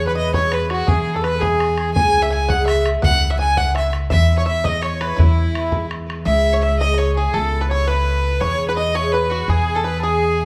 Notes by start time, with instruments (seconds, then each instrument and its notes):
Already playing: upright bass E2, bouzouki B2 G#3 E4 G#4
0.06 accordion B4, fiddle B4, five-string banjo B4
0.15 bouzouki B2 G#3 E4 G#4, five-string banjo D#5, fiddle D#5
0.32 bouzouki B2 G#3 E4 G#4, accordion C#5, five-string banjo C#5, fiddle C#5, bodhran
0.51 accordion B4, five-string banjo B4, fiddle B4, bodhran
0.69 bouzouki G#3 E4 G#4, accordion F#4, five-string banjo F#4, fiddle F#4, bodhran
0.87 upright bass E2, bouzouki B2 G#3 E4 G#4, five-string banjo G#4, fiddle G#4, accordion G#4, bodhran
1.14 fiddle A4, accordion A4, five-string banjo A4
1.23 bouzouki B2 G#3 E4 G#4, accordion B4, fiddle B4, five-string banjo B4, bodhran
1.35 accordion A4
1.39 bouzouki G#3 E4 G#4, accordion G#4, fiddle G#4, five-string banjo G#4, bodhran
1.43 bouzouki B2
1.60 bodhran
1.77 bouzouki G#3 E4 G#4, bodhran
1.94 upright bass C#2, bouzouki C#3 G#3 E4 G#4, fiddle G#5, accordion G#5, five-string banjo G#5, bodhran
2.22 accordion E5, fiddle E5, five-string banjo E5
2.30 bouzouki C#3 G#3 E4 G#4, five-string banjo G#5, accordion G#5, fiddle G#5
2.49 bouzouki C#3 G#3 E4 G#4, five-string banjo F#5, accordion F#5, fiddle F#5, bodhran
2.66 five-string banjo E5, fiddle E5, accordion E5, bodhran
2.85 bouzouki G#3 E4 G#4, bodhran
3.02 upright bass C#2, bouzouki C#3 A3 E4 B4, five-string banjo F#5, fiddle F#5, accordion F#5, bodhran
3.30 fiddle E5, five-string banjo E5
3.38 bouzouki C#3 A3 E4, accordion G#5, five-string banjo G#5, fiddle G#5
3.42 bouzouki B4
3.57 bouzouki C#3 A3 E4 B4, accordion F#5, five-string banjo F#5, fiddle F#5, bodhran
3.74 accordion E5, five-string banjo E5, fiddle E5, bodhran
3.93 bouzouki A3 E4 B4, bodhran
4.10 upright bass E2, bouzouki E3 G#3 E4 B4, five-string banjo E5, accordion E5, fiddle E5, bodhran
4.37 accordion C#5, five-string banjo C#5, fiddle C#5
4.46 bouzouki E3 G#3 E4 B4, five-string banjo E5, fiddle E5, accordion E5
4.64 bouzouki E3 G#3 E4 B4, five-string banjo D#5, accordion D#5, fiddle D#5, bodhran
4.81 fiddle C#5, five-string banjo C#5, accordion C#5, bodhran
4.94 accordion C#5
5.00 bouzouki G#3 E4 B4, fiddle B4, five-string banjo B4, bodhran
5.07 accordion C#5
5.17 upright bass E2, bouzouki E3 G#3 E4 B4, five-string banjo E4, fiddle E4, accordion E4, bodhran
5.53 bouzouki E3 G#3 E4 B4, bodhran
5.71 bouzouki E3 G#3 E4 B4, bodhran
5.91 bodhran
6.06 bouzouki G#3 E4 B4, bodhran
6.25 upright bass C#2, bouzouki C#3 G#3 E4 G#4, five-string banjo E5, fiddle E5, accordion E5
6.52 accordion C#5, fiddle C#5, five-string banjo C#5
6.61 bouzouki C#3 E4 G#4, fiddle E5, accordion E5, five-string banjo E5
6.79 bouzouki C#3 G#3 E4 G#4, fiddle D#5, accordion D#5, five-string banjo D#5
6.94 fiddle C#5, five-string banjo D#5
6.98 accordion C#5, five-string banjo C#5
7.16 bouzouki E4 G#4, fiddle G#4, accordion G#4, five-string banjo G#4
7.20 bouzouki G#3
7.33 upright bass C#2, bouzouki C#3 B3 E4 A4, fiddle A4, accordion A4, five-string banjo A4
7.61 fiddle B4, five-string banjo B4
7.69 bouzouki C#3 B3 E4 A4, accordion C#5, fiddle C#5, five-string banjo C#5
7.87 bouzouki C#3 B3 E4 A4, accordion B4, fiddle B4, five-string banjo B4
8.23 bouzouki B3 E4 A4
8.40 upright bass E2, bouzouki B2 G#3 E4 G#4, fiddle C#5, accordion C#5, five-string banjo C#5
8.68 accordion B4, fiddle B4, five-string banjo B4
8.76 bouzouki B2 G#3 E4 G#4, fiddle D#5, five-string banjo D#5, accordion D#5
8.94 bouzouki B2 G#3 E4 G#4, accordion C#5, five-string banjo C#5, fiddle C#5
9.06 accordion C#5
9.12 fiddle B4, accordion B4, five-string banjo B4
9.30 bouzouki G#3 E4 G#4, fiddle F#4, five-string banjo F#4
9.48 upright bass E2, bouzouki B2 G#3 E4 G#4, accordion G#4, fiddle G#4, five-string banjo G#4
9.75 fiddle A4, five-string banjo A4
9.83 bouzouki B2 E4, fiddle B4, five-string banjo B4
9.88 bouzouki G#4
9.97 accordion A4
10.02 bouzouki B2 G#3 E4 G#4, fiddle G#4, accordion G#4, five-string banjo G#4
10.38 bouzouki G#3 E4 G#4